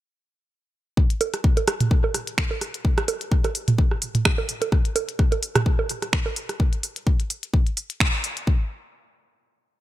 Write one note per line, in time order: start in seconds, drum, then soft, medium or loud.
0.97 kick loud
1.10 closed hi-hat soft
1.21 open hi-hat medium
1.21 low bongo medium
1.34 cross-stick soft
1.34 closed hi-hat medium
1.44 kick loud
1.57 closed hi-hat soft
1.57 low bongo medium
1.68 cross-stick medium
1.68 open hi-hat medium
1.80 closed hi-hat medium
1.80 mid tom loud
1.91 kick loud
2.04 low bongo medium
2.14 cross-stick soft
2.14 open hi-hat loud
2.27 closed hi-hat medium
2.38 finger snap loud
2.38 kick loud
2.51 low bongo medium
2.61 cross-stick soft
2.61 open hi-hat medium
2.74 closed hi-hat medium
2.85 kick loud
2.98 cross-stick medium
2.98 closed hi-hat soft
3.08 open hi-hat loud
3.08 low bongo medium
3.21 closed hi-hat medium
3.32 kick loud
3.44 cross-stick soft
3.44 closed hi-hat soft
3.44 low bongo medium
3.55 open hi-hat loud
3.68 closed hi-hat medium
3.68 mid tom loud
3.78 kick loud
3.91 cross-stick soft
4.02 open hi-hat loud
4.15 closed hi-hat medium
4.15 mid tom medium
4.25 finger snap loud
4.25 kick loud
4.25 cross-stick medium
4.38 low bongo medium
4.49 open hi-hat loud
4.62 closed hi-hat medium
4.62 low bongo medium
4.72 kick loud
4.72 cross-stick soft
4.85 closed hi-hat soft
4.96 open hi-hat loud
4.96 low bongo medium
5.09 closed hi-hat soft
5.19 kick loud
5.19 cross-stick soft
5.32 closed hi-hat soft
5.32 low bongo medium
5.43 open hi-hat medium
5.55 cross-stick medium
5.55 closed hi-hat medium
5.55 mid tom loud
5.66 kick loud
5.79 low bongo medium
5.89 open hi-hat medium
6.02 cross-stick soft
6.02 closed hi-hat medium
6.13 finger snap loud
6.13 kick loud
6.26 low bongo medium
6.36 open hi-hat loud
6.49 cross-stick soft
6.49 closed hi-hat medium
6.60 kick loud
6.73 closed hi-hat soft
6.83 open hi-hat loud
6.96 closed hi-hat medium
7.07 kick loud
7.20 closed hi-hat soft
7.30 open hi-hat loud
7.43 closed hi-hat soft
7.54 kick loud
7.67 closed hi-hat soft
7.77 open hi-hat medium
7.90 closed hi-hat medium
8.00 finger snap loud
8.00 kick loud
8.24 open hi-hat loud
8.37 closed hi-hat medium
8.47 kick loud